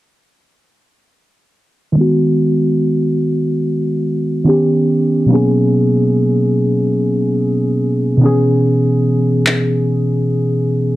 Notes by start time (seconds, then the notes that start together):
1.92 D#3 G#3
1.98 B3 F#4
4.44 D#3 B3 C#4
4.48 G4
5.26 B2 F#3 A#3
5.31 B3 C#4 G#4
8.17 B2 D#3
8.21 B3 C#4
8.25 E3 G#4
9.46 clap